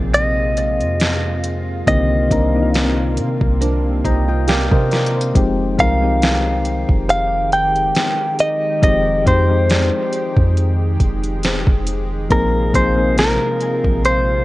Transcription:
Already playing: 808-style bass A#1, analog synth pad C3 G#3 F4, synth keys F3 A#3 C4 D#4 G#4, synth pluck G#4
0.14 clean electric guitar D#5, closed hi-hat
0.57 closed hi-hat
0.81 808-style bass F2, closed hi-hat
1.00 snare, closed hi-hat
1.43 closed hi-hat
1.86 808-style bass C2, analog synth pad C3 A#3, synth keys D3 D#3 A#3 C4 G4, clean electric guitar D#5, kick, closed hi-hat
2.29 808-style bass C2, synth keys D#3 A#3 C4 D4 A#4, kick, closed hi-hat
2.53 synth keys D#3 A#3 C4 D4 D#4
2.62 synth keys F4
2.74 snare, closed hi-hat
3.17 808-style bass C3, closed hi-hat
3.41 808-style bass C2, kick
3.61 nylon-string guitar F3 D4, synth pluck A#4, closed hi-hat
4.04 808-style bass C2, nylon-string guitar G3 D#4, synth pluck C5, synth keys D#5 G5 A#5, kick, closed hi-hat
4.28 nylon-string guitar F4, synth keys D#5 G5
4.48 nylon-string guitar A#3 G4, synth keys D5 F5 G5, snare, closed hi-hat
4.71 808-style bass C3, nylon-string guitar D4 A#4, synth keys C5 D#5 G5, kick
4.91 synth keys A#4 D5, snare, closed hi-hat, open hi-hat
5.06 closed hi-hat
5.16 synth keys C5
5.21 closed hi-hat
5.34 808-style bass F1, analog synth pad D#3 G#3 G4, synth keys F3 G#3 C4 D#4 G4, kick, closed hi-hat
5.77 808-style bass C2, synth keys F3 G#3 C4 D#4 A#4, clean electric guitar F5, kick, closed hi-hat
6.01 synth keys F3 G#3 C4 D#4 G4
6.22 snare, closed hi-hat
6.65 closed hi-hat
6.89 808-style bass F1, kick
7.09 clean electric guitar F5, closed hi-hat
7.52 clean electric guitar G5, closed hi-hat
7.76 closed hi-hat
7.95 snare, closed hi-hat
8.39 clean electric guitar D#5, closed hi-hat
8.81 808-style bass F1, synth keys F3 G#3 C4 D#4 G4, clean electric guitar D#5, kick, closed hi-hat
9.25 808-style bass F2, synth keys F3 G#3 C4 D#4 G4, clean electric guitar C5, kick, closed hi-hat
9.48 synth keys F3 G#3 C4 D#4 G4
9.69 synth pluck D5, snare, closed hi-hat
10.13 closed hi-hat
10.37 808-style bass F2, kick
10.57 closed hi-hat
11.00 808-style bass F1, kick, closed hi-hat
11.24 closed hi-hat
11.43 synth pluck C5, snare, closed hi-hat
11.67 808-style bass F1, kick
11.87 closed hi-hat
12.29 808-style bass A#1, analog synth pad C3 F4, synth keys F3 A#3 C4 D#4 G#4, clean electric guitar A#4, kick, closed hi-hat
12.73 808-style bass A#1, synth keys F3 A#3 C4 D#4 G#4, clean electric guitar C5, kick, closed hi-hat
12.96 synth keys F3 A#3 C4 D#4 G#4
13.18 clean electric guitar A#4, snare, closed hi-hat
13.61 closed hi-hat
13.84 808-style bass A#1, kick
14.05 clean electric guitar C5, closed hi-hat

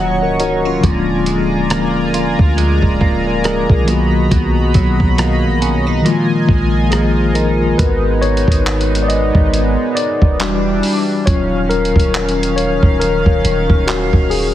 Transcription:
Already playing: 808-style bass D#1, tine electric piano D#3 F#3 A#3 F#5 A#5, clean electric guitar D#3 F#3 C#4 F4, analog synth pad F#3 C#5 D#5 C#6
0.22 808-style bass C#1, tine electric piano A#4 C#5
0.40 clean electric guitar D#4, tine electric piano F#4 A#4 C#5, closed hi-hat
0.65 tine electric piano C#4 F4, clean electric guitar F4
0.80 808-style bass D1, tine electric piano D3 F3 G#3, clean electric guitar D3, analog synth pad F4 D5 G#5 A#5, kick, closed hi-hat
0.85 tine electric piano A#3 F4
1.26 clean electric guitar G#3, closed hi-hat
1.70 clean electric guitar A#3, cross-stick, closed hi-hat
2.14 clean electric guitar F4, closed hi-hat
2.39 808-style bass D2, kick
2.57 clean electric guitar G#3, closed hi-hat
2.83 808-style bass D1, kick
3.01 clean electric guitar A#3, kick
3.26 tine electric piano A#4 D5
3.44 clean electric guitar G#3, tine electric piano A#4, cross-stick, closed hi-hat
3.70 808-style bass B1, tine electric piano F4 G#4, kick
3.84 clean electric guitar B2, tine electric piano D#3 F#3 A#3, analog synth pad F#4 D#5 B5, closed hi-hat
3.90 tine electric piano B3 F#4
4.31 808-style bass B1, clean electric guitar B2, kick, closed hi-hat
4.74 808-style bass B1, clean electric guitar F#3, kick, closed hi-hat
5.00 kick
5.18 clean electric guitar A#3, cross-stick, closed hi-hat
5.44 808-style bass A#1
5.61 clean electric guitar C#4, closed hi-hat
5.75 808-style bass B1
5.87 clean electric guitar D#4
6.02 clean electric guitar A#2, tine electric piano D#3 F3 G#3, analog synth pad F4 G#5
6.06 tine electric piano A#3 F4, closed hi-hat
6.49 808-style bass A#1, clean electric guitar G#3, kick
6.91 clean electric guitar F3, tine electric piano G#4, cross-stick, closed hi-hat
7.34 clean electric guitar D#4, tine electric piano A#4, closed hi-hat
7.78 808-style bass G#1, analog synth pad G#3 B3 D#4, tine electric piano B3 F#4 A#4 B4, kick, closed hi-hat
8.21 tine electric piano C#5, closed hi-hat
8.37 closed hi-hat
8.48 808-style bass G#1, kick, closed hi-hat
8.66 clap, closed hi-hat
8.81 closed hi-hat
8.95 closed hi-hat
9.03 tine electric piano D5
9.08 tine electric piano D#5, closed hi-hat
9.35 808-style bass G#1, kick
9.54 closed hi-hat
9.95 tine electric piano D5, closed hi-hat
10.22 808-style bass E1, kick
10.40 analog synth pad E3 G3 D4, tine electric piano G3 D4 F#4, clap, closed hi-hat
10.83 open hi-hat
11.26 808-style bass D#1, analog synth pad D#3 C#4 F5, tine electric piano F#3 C#4 F4 C#5, kick, closed hi-hat
11.69 tine electric piano A#4, closed hi-hat
11.85 closed hi-hat
11.96 808-style bass D#1, kick, closed hi-hat
12.14 clap, closed hi-hat
12.29 closed hi-hat
12.43 closed hi-hat
12.56 tine electric piano C#5, closed hi-hat
12.83 808-style bass D#1, kick
13.00 tine electric piano A#4, closed hi-hat
13.26 808-style bass D#1, kick
13.45 808-style bass D#1, closed hi-hat
13.70 808-style bass D#1, kick
13.87 tine electric piano F#4, clap, closed hi-hat
14.13 808-style bass D#1, kick
14.30 tine electric piano G#4, open hi-hat

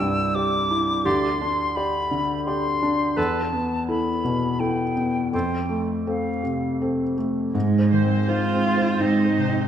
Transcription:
Already playing: felt piano C2 E4 G4 D5
0.00 felt piano G2, flute E6
0.35 felt piano G4 D5, flute D6
0.71 felt piano E4
1.04 felt piano D2, clarinet G4, oboe D5, flute C6
1.41 felt piano D4
1.76 felt piano G4 D5, flute B5
2.11 felt piano D3
2.45 felt piano G4 D5, flute C6
2.83 felt piano D4
3.17 felt piano E2, clarinet A4, oboe B4, flute A5
3.53 felt piano B3
3.89 felt piano E4 A4, flute B5
4.24 felt piano B2
4.60 felt piano E4 A4, flute G5
4.96 felt piano B3
5.32 felt piano F2, clarinet A4, oboe C5, flute G5
5.69 felt piano A3
6.07 felt piano C4 A4, flute F5
6.43 felt piano C3
6.82 felt piano C4 A4
7.17 felt piano A3
7.54 felt piano G#2, harp G#2, cello section G#2, cello G#3
7.79 felt piano C5
7.91 harp D#3, viola section C5
8.03 felt piano C4
8.28 cello section G#2, harp D#4, cello F4, felt piano C5
8.53 felt piano C4
8.65 viola section C5, harp C6
8.78 felt piano C5
9.01 cello section G#2, felt piano C4, cello D#4, harp D#4
9.25 felt piano C5
9.37 harp C3, viola section C5
9.49 felt piano C4

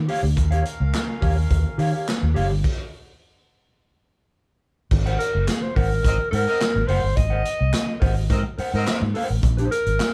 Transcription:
0.08 clean electric guitar G4 C#5 F5, open hi-hat
0.23 fingered electric bass D2, muted clean electric guitar stroke
0.36 fingered electric bass D#2, horn section C#4 A#4 F5, muted clean electric guitar stroke, kick, closed hi-hat
0.51 clean electric guitar G4 C#5 F5, closed hi-hat
0.65 muted clean electric guitar stroke, closed hi-hat
0.80 fingered electric bass C#2, muted clean electric guitar stroke
0.93 muted clean electric guitar stroke, snare, clap, closed hi-hat
1.21 fingered electric bass D#2, clean electric guitar G4 C#5 F5, kick, open hi-hat
1.36 muted clean electric guitar stroke
1.50 fingered electric bass D#2, muted clean electric guitar stroke, kick, closed hi-hat
1.64 muted clean electric guitar stroke
1.78 fingered electric bass D#3, clean electric guitar G4 C#5 F5, open hi-hat
1.93 clean electric guitar G4 C#5 F5
2.08 snare, clap, closed hi-hat
2.22 fingered electric bass D#2, muted clean electric guitar stroke
2.34 fingered electric bass F#1, clean electric guitar G4 C#5 F5, open hi-hat
2.50 fingered electric bass G1, muted clean electric guitar stroke
2.64 kick, crash
4.91 fingered electric bass G#1, muted clean electric guitar stroke, kick, crash
5.06 clean electric guitar A#4 C5 F#5, closed hi-hat
5.18 alto saxophone A#4, muted clean electric guitar stroke, closed hi-hat
5.33 fingered electric bass F#1, muted clean electric guitar stroke
5.47 alto saxophone G#4, muted clean electric guitar stroke, snare, clap, closed hi-hat
5.62 alto saxophone C5
5.75 fingered electric bass G#1, clean electric guitar A#4 C5 F#5, alto saxophone A#4, kick, open hi-hat
5.90 muted clean electric guitar stroke
6.02 fingered electric bass G#1, horn section C4 A#4 D#5, muted clean electric guitar stroke, kick, closed hi-hat
6.19 muted clean electric guitar stroke
6.31 fingered electric bass G#2, alto saxophone A#4, clean electric guitar A#4 C5 F#5, open hi-hat
6.47 horn section C4 A#4 D#5
6.60 snare, clap, closed hi-hat
6.75 fingered electric bass G#1, muted clean electric guitar stroke
6.87 fingered electric bass F#1, clean electric guitar A#4 C5 F#5, alto saxophone C5, open hi-hat
7.02 fingered electric bass G1, muted clean electric guitar stroke
7.16 fingered electric bass G#1, alto saxophone D#5, muted clean electric guitar stroke, kick, closed hi-hat
7.30 clean electric guitar A#4 C5 F#5
7.44 muted clean electric guitar stroke, closed hi-hat
7.59 fingered electric bass C2, muted clean electric guitar stroke
7.73 muted clean electric guitar stroke, snare, clap, closed hi-hat
8.00 fingered electric bass G#1, clean electric guitar A#4 C5 F#5, kick, open hi-hat
8.15 muted clean electric guitar stroke
8.28 fingered electric bass G#2, horn section C4 A#4 D#5, muted clean electric guitar stroke, kick, closed hi-hat
8.43 muted clean electric guitar stroke
8.58 clean electric guitar A#4 C5 F#5, muted fingered electric bass stroke, open hi-hat
8.72 fingered electric bass G#2, horn section C4 A#4 D#5, clean electric guitar A#4 C5 F#5
8.87 snare, clap, closed hi-hat
9.01 fingered electric bass G#2, muted clean electric guitar stroke
9.14 clean electric guitar A#4 C5 F#5, open hi-hat
9.29 fingered electric bass A1, muted clean electric guitar stroke
9.42 fingered electric bass A#1, muted clean electric guitar stroke, kick, closed hi-hat
9.57 clean electric guitar D#4 G#4 C5, closed hi-hat
9.71 alto saxophone A#4, muted clean electric guitar stroke, closed hi-hat
9.86 fingered electric bass G#1, muted clean electric guitar stroke, closed hi-hat
9.99 muted clean electric guitar stroke, snare, clap, closed hi-hat

